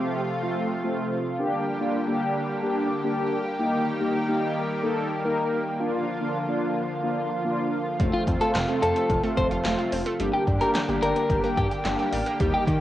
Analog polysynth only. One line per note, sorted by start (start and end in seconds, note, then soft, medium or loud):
0.00 0.21 A3 medium
0.00 0.21 C4 medium
0.00 0.21 G4 loud
0.43 0.68 A3 medium
0.43 0.68 C4 medium
0.43 0.68 F4 loud
0.84 1.18 A3 medium
0.84 1.18 C4 medium
0.84 1.18 F4 loud
1.39 1.64 A#3 medium
1.39 1.64 D4 medium
1.39 1.64 G4 medium
1.80 1.97 A#3 medium
1.80 1.97 D4 medium
1.80 1.97 F4 medium
2.08 2.41 A#3 medium
2.08 2.41 D4 medium
2.08 2.41 G4 loud
2.63 2.88 A#3 medium
2.63 2.88 D4 medium
2.63 2.88 G4 loud
3.04 3.38 A#3 medium
3.04 3.38 D4 medium
3.04 3.38 G4 loud
3.59 3.84 A#3 medium
3.59 3.84 D#4 medium
3.59 3.84 G4 loud
4.01 4.17 A#3 medium
4.01 4.17 D#4 medium
4.01 4.17 G4 medium
4.28 4.62 A#3 medium
4.28 4.62 D#4 medium
4.28 4.62 G4 loud
4.83 5.08 A#3 medium
4.83 5.08 D#4 medium
4.83 5.08 A4 loud
5.24 5.58 A#3 medium
5.24 5.58 D#4 medium
5.24 5.58 A#4 loud
5.79 6.05 A#3 medium
5.79 6.05 D4 medium
5.79 6.05 F4 loud
6.21 6.38 A#3 medium
6.21 6.38 D4 medium
6.21 6.38 F4 medium
6.48 6.82 A#3 medium
6.48 6.82 D4 medium
6.48 6.82 F4 loud
7.03 7.28 A#3 medium
7.03 7.28 D4 medium
7.03 7.28 F4 medium
7.45 7.78 A#3 medium
7.45 7.78 D4 medium
7.45 7.78 F4 loud
8.00 8.25 A3 medium
8.00 8.25 C4 medium
8.00 8.25 F4 medium
8.41 8.58 A3 medium
8.41 8.58 C4 medium
8.41 8.58 F4 medium
8.68 9.02 A3 medium
8.68 9.02 C4 medium
8.68 9.02 F4 loud
9.23 9.49 A3 medium
9.23 9.49 C4 medium
9.23 9.49 F4 medium
9.65 9.98 A3 medium
9.65 9.98 C4 medium
9.65 9.98 F4 loud
10.20 10.45 A#3 medium
10.20 10.45 D4 medium
10.20 10.45 G4 medium
10.61 10.78 A#3 medium
10.61 10.78 D4 medium
10.61 10.78 G4 loud
10.89 11.22 A#3 medium
10.89 11.22 D4 medium
10.89 11.22 G4 medium
11.44 11.69 A#3 medium
11.44 11.69 D4 medium
11.44 11.69 G4 medium
11.85 12.18 A#3 medium
11.85 12.18 D4 medium
11.85 12.18 G4 loud
12.40 12.65 A#3 medium
12.40 12.65 D#4 medium
12.40 12.65 G4 loud